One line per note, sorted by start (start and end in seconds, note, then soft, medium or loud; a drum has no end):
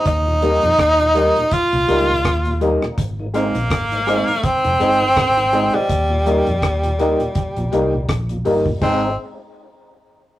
0.06 0.57 D#2 loud
0.06 1.55 D#4 loud
0.06 kick loud
0.06 closed hi-hat medium
0.27 0.34 D#2 medium
0.27 0.34 A#2 medium
0.42 0.53 G3 medium
0.42 0.63 G3 loud
0.42 0.53 A#3 medium
0.42 0.64 A#3 loud
0.42 0.53 D#4 medium
0.42 0.64 D#4 loud
0.42 0.60 G4 medium
0.42 0.60 A#4 medium
0.42 0.61 D#5 loud
0.42 closed hi-hat medium
0.63 0.71 D#2 medium
0.63 0.77 F2 medium
0.63 0.71 A#2 medium
0.63 closed hi-hat medium
0.78 1.30 D#2 medium
0.78 kick loud
0.78 cross-stick loud
0.78 closed hi-hat medium
0.99 1.07 D#2 medium
0.99 1.07 A#2 medium
0.99 closed hi-hat soft
1.15 1.25 G3 medium
1.15 1.36 G3 medium
1.15 1.25 A#3 medium
1.15 1.36 A#3 medium
1.15 1.26 D#4 medium
1.15 1.37 D#4 loud
1.15 1.33 G4 medium
1.15 1.33 A#4 medium
1.15 1.34 D#5 loud
1.15 closed hi-hat medium
1.36 1.44 D#2 medium
1.36 1.44 A#2 medium
1.36 closed hi-hat medium
1.51 2.62 F4 loud
1.51 kick loud
1.51 closed hi-hat loud
1.73 1.87 C2 medium
1.73 1.80 D#2 medium
1.73 1.81 A#2 medium
1.73 closed hi-hat medium
1.88 2.21 C#2 medium
1.88 2.09 G3 medium
1.88 1.98 G3 medium
1.88 1.98 A#3 medium
1.88 2.09 A#3 medium
1.88 1.99 D#4 medium
1.88 2.10 D#4 medium
1.88 2.06 G4 loud
1.88 2.06 A#4 medium
1.88 2.07 D#5 loud
1.88 closed hi-hat medium
2.09 2.17 D#2 medium
2.09 2.17 A#2 medium
2.25 2.76 D#2 loud
2.25 kick loud
2.25 cross-stick loud
2.25 closed hi-hat medium
2.45 2.54 D#2 medium
2.45 2.54 A#2 medium
2.45 closed hi-hat medium
2.61 2.82 G3 loud
2.61 2.72 G3 medium
2.61 2.82 A#3 loud
2.61 2.72 A#3 medium
2.61 2.83 D#4 loud
2.61 2.72 D#4 medium
2.61 2.79 G4 loud
2.61 2.79 A#4 medium
2.61 2.80 D#5 loud
2.61 closed hi-hat medium
2.82 2.90 D#2 medium
2.82 2.90 A#2 medium
2.82 cross-stick medium
2.98 3.49 G#1 loud
2.98 kick loud
2.98 closed hi-hat loud
3.19 3.27 G#2 medium
3.19 3.27 D#3 medium
3.34 3.55 G#3 medium
3.34 3.45 G#3 medium
3.34 4.46 A#3 loud
3.34 3.55 C4 medium
3.34 3.45 C4 medium
3.34 3.45 D#4 medium
3.34 3.56 D#4 medium
3.34 3.52 G#4 medium
3.34 3.53 C5 medium
3.34 3.53 D#5 medium
3.34 closed hi-hat medium
3.55 3.71 A#1 medium
3.55 3.63 G#2 medium
3.55 3.63 D#3 medium
3.55 closed hi-hat medium
3.70 4.22 G#1 loud
3.70 kick loud
3.70 cross-stick loud
3.70 closed hi-hat medium
3.92 3.99 G#2 medium
3.92 3.99 D#3 medium
3.92 3.98 C5 soft
3.92 3.98 D#5 soft
3.92 closed hi-hat soft
4.06 4.28 G#3 medium
4.06 4.18 G#3 medium
4.06 4.28 C4 medium
4.06 4.18 C4 medium
4.06 4.29 D#4 medium
4.06 4.18 D#4 medium
4.06 4.25 G#4 loud
4.06 4.26 C5 medium
4.06 4.26 D#5 loud
4.06 cross-stick medium
4.06 closed hi-hat medium
4.28 4.36 G#2 medium
4.28 4.36 D#3 medium
4.28 closed hi-hat medium
4.43 5.77 C4 loud
4.43 kick loud
4.43 closed hi-hat loud
4.64 4.79 F1 medium
4.64 4.72 G#2 medium
4.64 4.72 D#3 medium
4.64 closed hi-hat medium
4.80 5.13 G1 loud
4.80 4.90 G#3 medium
4.80 5.01 G#3 medium
4.80 4.90 C4 medium
4.80 5.01 C4 medium
4.80 4.91 D#4 medium
4.80 5.02 D#4 loud
4.80 4.98 G#4 loud
4.80 4.99 C5 medium
4.80 4.99 D#5 loud
4.80 closed hi-hat medium
5.01 5.09 G#2 medium
5.01 5.09 D#3 medium
5.17 5.68 G#1 loud
5.17 kick loud
5.17 cross-stick loud
5.17 closed hi-hat medium
5.37 5.45 G#2 medium
5.37 5.45 D#3 medium
5.37 closed hi-hat medium
5.53 5.63 G#3 medium
5.53 5.74 G#3 medium
5.53 5.63 C4 medium
5.53 5.74 C4 medium
5.53 5.63 D#4 medium
5.53 5.75 D#4 loud
5.53 5.71 G#4 loud
5.53 5.72 C5 medium
5.53 5.72 D#5 loud
5.53 closed hi-hat medium
5.73 5.82 G#2 medium
5.73 5.82 D#3 medium
5.73 8.09 G3 medium
5.73 5.88 G#4 medium
5.73 5.88 C5 medium
5.73 5.88 D#5 medium
5.89 6.41 D#2 loud
5.89 kick loud
5.89 closed hi-hat loud
6.10 6.18 D#2 medium
6.10 6.18 A#2 medium
6.26 6.36 G3 medium
6.26 6.47 G3 medium
6.26 6.37 A#3 medium
6.26 6.47 A#3 medium
6.26 6.37 D#4 medium
6.26 6.48 D#4 loud
6.26 6.44 G4 medium
6.26 6.45 A#4 medium
6.26 6.45 D#5 loud
6.26 closed hi-hat medium
6.47 6.55 D#2 medium
6.47 6.63 F2 medium
6.47 6.55 A#2 medium
6.47 closed hi-hat medium
6.62 7.14 D#2 loud
6.62 kick loud
6.62 cross-stick loud
6.62 closed hi-hat medium
6.83 6.91 D#2 medium
6.83 6.91 A#2 medium
6.83 closed hi-hat medium
6.99 7.20 G3 medium
6.99 7.10 G3 medium
6.99 7.10 A#3 medium
6.99 7.20 A#3 medium
6.99 7.10 D#4 medium
6.99 7.21 D#4 medium
6.99 7.17 G4 medium
6.99 7.18 A#4 medium
6.99 7.18 D#5 loud
6.99 closed hi-hat medium
7.20 7.28 D#2 medium
7.20 7.28 A#2 medium
7.20 closed hi-hat medium
7.35 kick loud
7.35 closed hi-hat loud
7.57 7.71 A#1 loud
7.57 7.65 D#2 medium
7.57 7.65 A#2 medium
7.57 closed hi-hat medium
7.72 8.05 C2 medium
7.72 7.93 G3 medium
7.72 7.82 G3 medium
7.72 7.93 A#3 medium
7.72 7.83 A#3 medium
7.72 7.83 D#4 medium
7.72 7.94 D#4 loud
7.72 7.90 G4 loud
7.72 7.91 A#4 medium
7.72 7.91 D#5 loud
7.72 closed hi-hat medium
7.93 8.01 D#2 medium
7.93 8.01 A#2 medium
8.09 8.41 A#1 loud
8.09 kick loud
8.09 cross-stick loud
8.09 closed hi-hat medium
8.29 8.37 D#2 medium
8.29 8.37 A#2 medium
8.29 closed hi-hat medium
8.45 8.78 G1 medium
8.45 8.66 G3 medium
8.45 8.56 G3 medium
8.45 8.56 A#3 medium
8.45 8.66 A#3 medium
8.45 8.56 D#4 medium
8.45 8.67 D#4 medium
8.45 8.63 G4 loud
8.45 8.64 A#4 medium
8.45 8.64 D#5 loud
8.45 open hi-hat medium
8.66 8.74 D#2 medium
8.66 8.74 A#2 medium
8.66 kick medium
8.81 9.16 G#1 loud
8.81 9.05 G#3 medium
8.81 9.10 G#3 medium
8.81 9.10 C4 medium
8.81 9.06 C4 medium
8.81 9.16 C4 medium
8.81 9.10 D#4 loud
8.81 9.06 D#4 medium
8.81 9.10 G#4 medium
8.81 9.10 C5 medium
8.81 9.10 D#5 loud
8.81 kick loud
8.81 crash medium